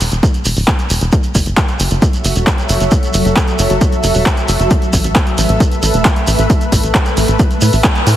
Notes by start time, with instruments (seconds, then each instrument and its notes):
0.01 analog synth bass E1, open hi-hat, shekere
0.12 analog synth bass E1, closed hi-hat, shekere
0.23 kick, closed hi-hat, shekere
0.34 closed hi-hat, shekere
0.45 analog synth bass E1, open hi-hat, shekere
0.56 analog synth bass D1, open hi-hat, shekere
0.68 kick, clap, shekere
0.79 closed hi-hat, shekere
0.90 analog synth bass E1, open hi-hat, shekere
1.01 analog synth bass E1, closed hi-hat, shekere
1.12 ambient pad F#3 F#4 A4 E5, kick, closed hi-hat, shekere
1.23 closed hi-hat, shekere
1.35 analog synth bass F#1, kick, open hi-hat, shekere
1.46 analog synth bass F#1, closed hi-hat, shekere
1.57 kick, clap, closed hi-hat, shekere
1.68 closed hi-hat, shekere
1.80 analog synth bass F#1, open hi-hat, shekere
1.91 analog synth bass F#1, closed hi-hat, shekere
2.02 kick, closed hi-hat, shekere
2.13 closed hi-hat, shekere
2.25 analog synth bass F#1, open hi-hat, shekere
2.36 analog synth bass E1, closed hi-hat, shekere
2.47 kick, clap, closed hi-hat, shekere
2.58 closed hi-hat, shekere
2.69 analog synth bass F#1, open hi-hat, shekere
2.80 analog synth bass F#1, closed hi-hat, shekere
2.91 kick, closed hi-hat, shekere
3.03 closed hi-hat, shekere
3.14 analog synth bass F#1, open hi-hat, shekere
3.25 analog synth bass F#1, closed hi-hat, shekere
3.36 kick, clap, closed hi-hat, shekere
3.48 closed hi-hat, shekere
3.59 analog synth bass F#1, open hi-hat, shekere
3.70 analog synth bass F#1, closed hi-hat, shekere
3.81 kick, closed hi-hat, shekere
3.92 closed hi-hat, shekere
4.04 analog synth bass F#1, open hi-hat, shekere
4.14 analog synth bass E1, open hi-hat, shekere
4.26 kick, clap, shekere
4.37 closed hi-hat, shekere
4.48 analog synth bass F#1, open hi-hat, shekere
4.60 analog synth bass F#1, closed hi-hat, shekere
4.70 ambient pad A3 B4, kick, closed hi-hat, shekere
4.82 closed hi-hat, shekere
4.93 analog synth bass A1, kick, open hi-hat, shekere
5.04 analog synth bass A1, closed hi-hat, shekere
5.16 kick, clap, closed hi-hat, shekere
5.26 closed hi-hat, shekere
5.38 analog synth bass A1, open hi-hat, shekere
5.49 analog synth bass A1, closed hi-hat, shekere
5.60 kick, closed hi-hat, shekere
5.72 closed hi-hat, shekere
5.83 analog synth bass A1, open hi-hat, shekere
5.94 analog synth bass E1, closed hi-hat, shekere
6.05 kick, clap, closed hi-hat, shekere
6.16 closed hi-hat, shekere
6.27 analog synth bass A1, open hi-hat, shekere
6.39 analog synth bass A1, closed hi-hat, shekere
6.50 kick, closed hi-hat, shekere
6.61 closed hi-hat, shekere
6.72 analog synth bass A1, kick, open hi-hat, shekere
6.83 analog synth bass A1, closed hi-hat, shekere
6.95 kick, clap, closed hi-hat, shekere
7.05 closed hi-hat, shekere
7.17 analog synth bass A1, open hi-hat, shekere
7.28 analog synth bass A1, closed hi-hat, shekere
7.39 kick, closed hi-hat, shekere
7.51 closed hi-hat, shekere
7.61 analog synth bass A2, open hi-hat, shekere
7.73 analog synth bass A1, open hi-hat, shekere
7.84 kick, clap, closed hi-hat, shekere
7.95 closed hi-hat, shekere
8.07 analog synth bass A2, open hi-hat, shekere